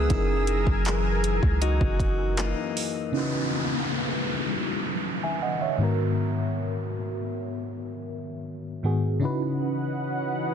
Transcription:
Already playing: C#3 F#3 B3 E4 G#4 D#6 E6
0.08 F#1 F#2 F#3 C#4 D#4 E4 A#4 G#5, kick, closed hi-hat
0.12 G#4 A#4
0.47 closed hi-hat
0.67 F#1, kick
0.85 E3 G#4, clap, closed hi-hat
1.24 closed hi-hat
1.43 C#2, kick
1.62 D#4 F#4, closed hi-hat
1.81 F#1, kick
2.00 kick, closed hi-hat
2.37 E3 A#3 D#4, clap, closed hi-hat
2.77 open hi-hat
3.12 C#3 C#4 D#4 E4, downlifter
3.16 F#4 B4
5.23 E5 G#5
5.42 D#5 F#5
5.61 C#5 E5
5.78 G#2 D#3 B3
5.82 F#4 A#4
8.83 G#2 D#3 B3 F#4 G#4
9.20 C#3 E3 C#4 D#4 E4 B4 D#5 F#5
9.24 F#4 B4

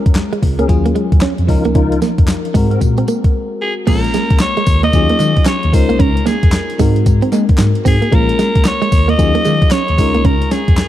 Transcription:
Already playing: G#3 C#4 F4 A#4
0.06 F2, kick, closed hi-hat
0.15 snare, clap, closed hi-hat
0.33 G#3, closed hi-hat
0.43 C#2, muted clean electric guitar stroke, kick, open hi-hat
0.59 A#3 C#4 G#4 A#4, closed hi-hat
0.68 D#2 F#3 C#4 F4 G#4, muted clean electric guitar stroke, kick, closed hi-hat
0.86 A#3, closed hi-hat
0.95 G#3, closed hi-hat
1.12 D#2, kick, closed hi-hat
1.21 C#4, snare, clap, closed hi-hat
1.38 F2, closed hi-hat
1.47 C#2 F3 C#4 D#4 F4 A#4, muted clean electric guitar stroke, kick, open hi-hat
1.65 C2 A#3, closed hi-hat
1.75 C#2 C#4 D#4 F4 A#4, kick, closed hi-hat
1.92 muted clean electric guitar stroke, closed hi-hat
2.02 A#3, snare, closed hi-hat, tambourine
2.18 F2, kick, closed hi-hat
2.28 snare, clap, closed hi-hat, tambourine
2.45 closed hi-hat
2.54 G#2 G#3 C4 F#4 A#4, kick, open hi-hat, tambourine
2.70 C4 F#4 A#4, closed hi-hat
2.81 A#2, muted clean electric guitar stroke, kick, closed hi-hat, tambourine
2.98 C4, closed hi-hat
3.08 A#3, closed hi-hat, tambourine
3.24 kick, closed hi-hat
3.61 G#4
3.87 A#1 G#3 A#3 C4 F4 A#4, kick, closed hi-hat, crash
3.95 C#4
4.04 muted clean electric guitar stroke, closed hi-hat
4.14 G#3, snare, closed hi-hat, tambourine
4.30 C#2, kick, closed hi-hat
4.40 C#5, snare, clap, closed hi-hat, tambourine
4.57 G#3, closed hi-hat
4.66 D#2, muted clean electric guitar stroke, kick, open hi-hat, tambourine
4.83 A#3 D#5, closed hi-hat
4.93 D#2 F#3 C#4 D#4 F4 G#4, muted clean electric guitar stroke, kick, closed hi-hat, tambourine
5.09 A#3, closed hi-hat
5.20 D#3 G#3, clap, closed hi-hat, tambourine
5.36 kick, closed hi-hat
5.46 C#4 C#5, snare, clap, closed hi-hat, tambourine
5.63 D#2, closed hi-hat
5.72 G#3 C#4 D#4 F4 A#4 C5, muted clean electric guitar stroke, kick, open hi-hat, tambourine
5.89 C2 A#3, closed hi-hat
5.99 C#2 C#4 A#4, kick, closed hi-hat
6.15 muted clean electric guitar stroke, closed hi-hat
6.26 A#3 G#4, snare, closed hi-hat, tambourine
6.43 F2, kick, closed hi-hat
6.52 snare, clap, closed hi-hat, tambourine
6.70 closed hi-hat
6.79 G#2 G#3 C4 D#4 F#4 A#4, kick, open hi-hat, tambourine
6.96 closed hi-hat
7.06 G#2, muted clean electric guitar stroke, kick, closed hi-hat, tambourine
7.22 C4, closed hi-hat
7.32 G#3 A#3, clap, closed hi-hat, tambourine
7.49 kick, closed hi-hat
7.58 G#2, muted clean electric guitar stroke, snare, clap, closed hi-hat, tambourine
7.60 clap
7.75 closed hi-hat
7.85 G#2 C4 G#4, kick, open hi-hat, tambourine
8.02 A#3, closed hi-hat
8.11 A#1 G#3 A#3 C#4 F4 A#4, kick, closed hi-hat
8.28 muted clean electric guitar stroke, closed hi-hat
8.39 G#3, snare, closed hi-hat, tambourine
8.55 C#2, kick, closed hi-hat
8.65 C#5, snare, clap, closed hi-hat, tambourine
8.82 G#3, closed hi-hat
8.91 D#2, muted clean electric guitar stroke, kick, open hi-hat, tambourine
9.08 A#3 D#5, closed hi-hat
9.18 D#2 F#3 C#4 D#4 F4 G#4, muted clean electric guitar stroke, kick, closed hi-hat, tambourine
9.35 A#3, closed hi-hat
9.45 D#3 G#3, clap, closed hi-hat, tambourine
9.62 kick, closed hi-hat
9.71 C#4 C#5, snare, clap, closed hi-hat, tambourine
9.88 D#2, closed hi-hat
9.98 C#2 G#3 C#4 D#4 F4 A#4, muted clean electric guitar stroke, kick, open hi-hat, tambourine
10.14 C2 A#3, closed hi-hat
10.25 C#2 C#4 A#4, kick, closed hi-hat
10.42 muted clean electric guitar stroke, closed hi-hat
10.51 C#4 G#4, snare, closed hi-hat, tambourine
10.68 F2, kick, closed hi-hat
10.77 snare, clap, closed hi-hat, tambourine

